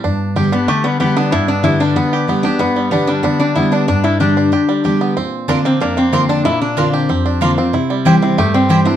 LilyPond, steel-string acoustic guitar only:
\new Staff \with { instrumentName = "Steel-string acoustic guitar" } { \time 4/4 \key g \mixolydian \tempo 4 = 187 << { r4 <d g b g'>8 <b g'>8 r4 <d g b g'>4 | r4 <d g b g'>4 r4 <d g b g'>8 <b g'>8 | r4 <d g b g'>4 r4 <d g b g'>4 | r4 <d g b g'>4 r4 <d g b g'>4 |
r4 <d bes c' f'>4 r4 <d bes c' f'>4 | r4 <d bes c' f'>4 r4 <d bes c' f'>8 <c' f'>8 | r4 <e g c' e'>4 r4 <e g c' e'>8 <c' e'>8 | } \\ { g,2 d2 | g,2 d2 | g,2 d2 | g,2 d2 |
bes,2 f,2 | bes,2 f,2 | c2 g,2 | } >> }